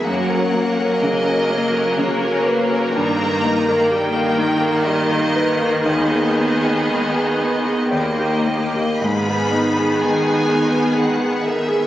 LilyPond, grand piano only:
\new Staff \with { instrumentName = "Grand piano" } { \time 3/4 \key gis \minor \tempo 4 = 62 fis,16 ais'16 ais16 ais'16 cis16 ais'16 ais16 ais'16 cis16 ais'16 b'16 ais'16 | g,16 ais'16 ais16 ais'16 g16 ais'16 ais16 ais'16 g16 ais'16 b'16 ais'16 | dis,16 gis'16 b16 gis'16 dis16 gis'16 b16 gis'16 dis,16 g'16 ais16 g'16 | gis,16 gis'16 b16 gis'16 dis16 gis'16 b16 gis'16 dis16 gis'16 ais'16 gis'16 | }